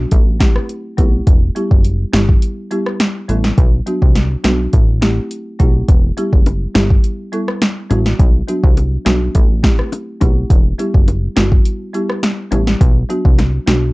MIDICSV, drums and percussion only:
0, 0, Header, 1, 2, 480
1, 0, Start_track
1, 0, Key_signature, 1, "minor"
1, 0, Tempo, 576923
1, 1057, Time_signature, 4, 2, 24, 8
1, 11591, End_track
2, 0, Start_track
2, 0, Title_t, "Drums"
2, 95, Note_on_c, 9, 42, 75
2, 98, Note_on_c, 9, 36, 88
2, 178, Note_off_c, 9, 42, 0
2, 181, Note_off_c, 9, 36, 0
2, 336, Note_on_c, 9, 36, 86
2, 336, Note_on_c, 9, 42, 45
2, 337, Note_on_c, 9, 38, 108
2, 419, Note_off_c, 9, 36, 0
2, 419, Note_off_c, 9, 42, 0
2, 420, Note_off_c, 9, 38, 0
2, 463, Note_on_c, 9, 37, 101
2, 547, Note_off_c, 9, 37, 0
2, 576, Note_on_c, 9, 42, 66
2, 659, Note_off_c, 9, 42, 0
2, 816, Note_on_c, 9, 42, 55
2, 817, Note_on_c, 9, 36, 85
2, 899, Note_off_c, 9, 42, 0
2, 900, Note_off_c, 9, 36, 0
2, 1056, Note_on_c, 9, 36, 114
2, 1056, Note_on_c, 9, 42, 64
2, 1139, Note_off_c, 9, 36, 0
2, 1139, Note_off_c, 9, 42, 0
2, 1298, Note_on_c, 9, 42, 62
2, 1381, Note_off_c, 9, 42, 0
2, 1424, Note_on_c, 9, 36, 90
2, 1507, Note_off_c, 9, 36, 0
2, 1535, Note_on_c, 9, 42, 68
2, 1618, Note_off_c, 9, 42, 0
2, 1775, Note_on_c, 9, 42, 46
2, 1776, Note_on_c, 9, 38, 115
2, 1859, Note_off_c, 9, 38, 0
2, 1859, Note_off_c, 9, 42, 0
2, 1903, Note_on_c, 9, 36, 88
2, 1986, Note_off_c, 9, 36, 0
2, 2015, Note_on_c, 9, 42, 73
2, 2098, Note_off_c, 9, 42, 0
2, 2255, Note_on_c, 9, 42, 43
2, 2338, Note_off_c, 9, 42, 0
2, 2383, Note_on_c, 9, 37, 96
2, 2466, Note_off_c, 9, 37, 0
2, 2496, Note_on_c, 9, 38, 112
2, 2496, Note_on_c, 9, 42, 69
2, 2579, Note_off_c, 9, 38, 0
2, 2579, Note_off_c, 9, 42, 0
2, 2737, Note_on_c, 9, 42, 55
2, 2820, Note_off_c, 9, 42, 0
2, 2862, Note_on_c, 9, 38, 70
2, 2946, Note_off_c, 9, 38, 0
2, 2976, Note_on_c, 9, 42, 63
2, 2977, Note_on_c, 9, 36, 115
2, 3059, Note_off_c, 9, 42, 0
2, 3060, Note_off_c, 9, 36, 0
2, 3218, Note_on_c, 9, 42, 62
2, 3301, Note_off_c, 9, 42, 0
2, 3344, Note_on_c, 9, 36, 87
2, 3428, Note_off_c, 9, 36, 0
2, 3456, Note_on_c, 9, 38, 69
2, 3456, Note_on_c, 9, 42, 67
2, 3539, Note_off_c, 9, 42, 0
2, 3540, Note_off_c, 9, 38, 0
2, 3696, Note_on_c, 9, 42, 46
2, 3697, Note_on_c, 9, 38, 112
2, 3780, Note_off_c, 9, 38, 0
2, 3780, Note_off_c, 9, 42, 0
2, 3936, Note_on_c, 9, 42, 72
2, 3938, Note_on_c, 9, 36, 91
2, 4019, Note_off_c, 9, 42, 0
2, 4022, Note_off_c, 9, 36, 0
2, 4176, Note_on_c, 9, 42, 42
2, 4178, Note_on_c, 9, 38, 110
2, 4260, Note_off_c, 9, 42, 0
2, 4261, Note_off_c, 9, 38, 0
2, 4417, Note_on_c, 9, 42, 70
2, 4500, Note_off_c, 9, 42, 0
2, 4656, Note_on_c, 9, 42, 54
2, 4658, Note_on_c, 9, 36, 81
2, 4739, Note_off_c, 9, 42, 0
2, 4741, Note_off_c, 9, 36, 0
2, 4896, Note_on_c, 9, 42, 65
2, 4897, Note_on_c, 9, 36, 115
2, 4980, Note_off_c, 9, 36, 0
2, 4980, Note_off_c, 9, 42, 0
2, 5138, Note_on_c, 9, 42, 63
2, 5138, Note_on_c, 9, 60, 48
2, 5221, Note_off_c, 9, 42, 0
2, 5221, Note_off_c, 9, 60, 0
2, 5264, Note_on_c, 9, 36, 87
2, 5348, Note_off_c, 9, 36, 0
2, 5376, Note_on_c, 9, 42, 67
2, 5378, Note_on_c, 9, 60, 75
2, 5459, Note_off_c, 9, 42, 0
2, 5461, Note_off_c, 9, 60, 0
2, 5616, Note_on_c, 9, 42, 46
2, 5617, Note_on_c, 9, 38, 115
2, 5619, Note_on_c, 9, 60, 72
2, 5619, Note_on_c, 9, 61, 72
2, 5699, Note_off_c, 9, 42, 0
2, 5700, Note_off_c, 9, 38, 0
2, 5702, Note_off_c, 9, 60, 0
2, 5702, Note_off_c, 9, 61, 0
2, 5744, Note_on_c, 9, 36, 87
2, 5827, Note_off_c, 9, 36, 0
2, 5856, Note_on_c, 9, 42, 75
2, 5939, Note_off_c, 9, 42, 0
2, 6097, Note_on_c, 9, 42, 44
2, 6180, Note_off_c, 9, 42, 0
2, 6224, Note_on_c, 9, 37, 98
2, 6308, Note_off_c, 9, 37, 0
2, 6336, Note_on_c, 9, 60, 67
2, 6337, Note_on_c, 9, 38, 115
2, 6337, Note_on_c, 9, 42, 68
2, 6419, Note_off_c, 9, 60, 0
2, 6420, Note_off_c, 9, 38, 0
2, 6421, Note_off_c, 9, 42, 0
2, 6577, Note_on_c, 9, 42, 56
2, 6577, Note_on_c, 9, 60, 83
2, 6577, Note_on_c, 9, 61, 81
2, 6661, Note_off_c, 9, 42, 0
2, 6661, Note_off_c, 9, 60, 0
2, 6661, Note_off_c, 9, 61, 0
2, 6704, Note_on_c, 9, 38, 69
2, 6787, Note_off_c, 9, 38, 0
2, 6817, Note_on_c, 9, 36, 120
2, 6817, Note_on_c, 9, 42, 66
2, 6900, Note_off_c, 9, 36, 0
2, 6900, Note_off_c, 9, 42, 0
2, 7058, Note_on_c, 9, 60, 45
2, 7059, Note_on_c, 9, 42, 61
2, 7142, Note_off_c, 9, 42, 0
2, 7142, Note_off_c, 9, 60, 0
2, 7185, Note_on_c, 9, 36, 90
2, 7268, Note_off_c, 9, 36, 0
2, 7297, Note_on_c, 9, 42, 68
2, 7299, Note_on_c, 9, 60, 72
2, 7380, Note_off_c, 9, 42, 0
2, 7382, Note_off_c, 9, 60, 0
2, 7537, Note_on_c, 9, 42, 44
2, 7538, Note_on_c, 9, 38, 114
2, 7539, Note_on_c, 9, 60, 73
2, 7539, Note_on_c, 9, 61, 72
2, 7620, Note_off_c, 9, 42, 0
2, 7621, Note_off_c, 9, 38, 0
2, 7622, Note_off_c, 9, 60, 0
2, 7622, Note_off_c, 9, 61, 0
2, 7777, Note_on_c, 9, 42, 70
2, 7779, Note_on_c, 9, 36, 86
2, 7860, Note_off_c, 9, 42, 0
2, 7862, Note_off_c, 9, 36, 0
2, 8017, Note_on_c, 9, 36, 86
2, 8017, Note_on_c, 9, 42, 44
2, 8019, Note_on_c, 9, 38, 112
2, 8100, Note_off_c, 9, 36, 0
2, 8100, Note_off_c, 9, 42, 0
2, 8102, Note_off_c, 9, 38, 0
2, 8144, Note_on_c, 9, 37, 96
2, 8228, Note_off_c, 9, 37, 0
2, 8256, Note_on_c, 9, 60, 71
2, 8259, Note_on_c, 9, 42, 67
2, 8339, Note_off_c, 9, 60, 0
2, 8342, Note_off_c, 9, 42, 0
2, 8495, Note_on_c, 9, 60, 77
2, 8495, Note_on_c, 9, 61, 81
2, 8498, Note_on_c, 9, 36, 83
2, 8498, Note_on_c, 9, 42, 56
2, 8579, Note_off_c, 9, 60, 0
2, 8579, Note_off_c, 9, 61, 0
2, 8581, Note_off_c, 9, 36, 0
2, 8581, Note_off_c, 9, 42, 0
2, 8737, Note_on_c, 9, 36, 117
2, 8738, Note_on_c, 9, 42, 64
2, 8821, Note_off_c, 9, 36, 0
2, 8821, Note_off_c, 9, 42, 0
2, 8977, Note_on_c, 9, 60, 50
2, 8980, Note_on_c, 9, 42, 60
2, 9060, Note_off_c, 9, 60, 0
2, 9063, Note_off_c, 9, 42, 0
2, 9105, Note_on_c, 9, 36, 89
2, 9188, Note_off_c, 9, 36, 0
2, 9217, Note_on_c, 9, 60, 73
2, 9218, Note_on_c, 9, 42, 66
2, 9301, Note_off_c, 9, 42, 0
2, 9301, Note_off_c, 9, 60, 0
2, 9457, Note_on_c, 9, 38, 112
2, 9457, Note_on_c, 9, 42, 47
2, 9457, Note_on_c, 9, 60, 70
2, 9457, Note_on_c, 9, 61, 68
2, 9540, Note_off_c, 9, 38, 0
2, 9540, Note_off_c, 9, 42, 0
2, 9540, Note_off_c, 9, 60, 0
2, 9540, Note_off_c, 9, 61, 0
2, 9584, Note_on_c, 9, 36, 88
2, 9667, Note_off_c, 9, 36, 0
2, 9697, Note_on_c, 9, 42, 75
2, 9780, Note_off_c, 9, 42, 0
2, 9937, Note_on_c, 9, 42, 45
2, 10021, Note_off_c, 9, 42, 0
2, 10064, Note_on_c, 9, 37, 97
2, 10147, Note_off_c, 9, 37, 0
2, 10175, Note_on_c, 9, 60, 69
2, 10177, Note_on_c, 9, 38, 112
2, 10177, Note_on_c, 9, 42, 68
2, 10259, Note_off_c, 9, 60, 0
2, 10260, Note_off_c, 9, 38, 0
2, 10260, Note_off_c, 9, 42, 0
2, 10415, Note_on_c, 9, 60, 83
2, 10415, Note_on_c, 9, 61, 84
2, 10417, Note_on_c, 9, 42, 57
2, 10498, Note_off_c, 9, 60, 0
2, 10498, Note_off_c, 9, 61, 0
2, 10500, Note_off_c, 9, 42, 0
2, 10543, Note_on_c, 9, 38, 72
2, 10626, Note_off_c, 9, 38, 0
2, 10657, Note_on_c, 9, 36, 118
2, 10657, Note_on_c, 9, 42, 65
2, 10740, Note_off_c, 9, 36, 0
2, 10741, Note_off_c, 9, 42, 0
2, 10897, Note_on_c, 9, 60, 49
2, 10899, Note_on_c, 9, 42, 61
2, 10980, Note_off_c, 9, 60, 0
2, 10982, Note_off_c, 9, 42, 0
2, 11024, Note_on_c, 9, 36, 90
2, 11107, Note_off_c, 9, 36, 0
2, 11136, Note_on_c, 9, 42, 65
2, 11137, Note_on_c, 9, 38, 66
2, 11138, Note_on_c, 9, 60, 75
2, 11220, Note_off_c, 9, 38, 0
2, 11220, Note_off_c, 9, 42, 0
2, 11222, Note_off_c, 9, 60, 0
2, 11377, Note_on_c, 9, 38, 107
2, 11377, Note_on_c, 9, 42, 47
2, 11379, Note_on_c, 9, 60, 73
2, 11379, Note_on_c, 9, 61, 71
2, 11460, Note_off_c, 9, 38, 0
2, 11460, Note_off_c, 9, 42, 0
2, 11462, Note_off_c, 9, 60, 0
2, 11462, Note_off_c, 9, 61, 0
2, 11591, End_track
0, 0, End_of_file